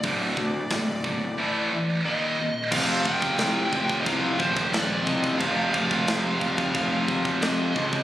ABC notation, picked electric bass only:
X:1
M:4/4
L:1/8
Q:1/4=89
K:Fmix
V:1 name="Picked electric bass" clef=bass
D,,, D,, D,,, D,,, z4 | F,,,2 C,, F,,, C,, E,,, E,,, C,, | F,,, F,,, F,,, F,,, F,,, F,,, F,, ^C,, |]